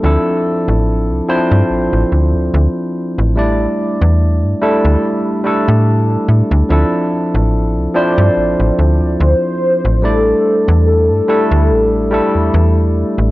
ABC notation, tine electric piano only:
X:1
M:4/4
L:1/8
Q:"Swing 16ths" 1/4=72
K:Dm
V:1 name="Tine electric piano"
[F,CDEA]3 [F,CDEc] z4 | [G,A,DEd]3 [G,A,DEA]2 [G,A,DEA]3 | [F,CDEA]3 [F,CDEc] z4 | [G,A,DEd]3 [G,A,DEA]2 [G,A,DEA]3 |]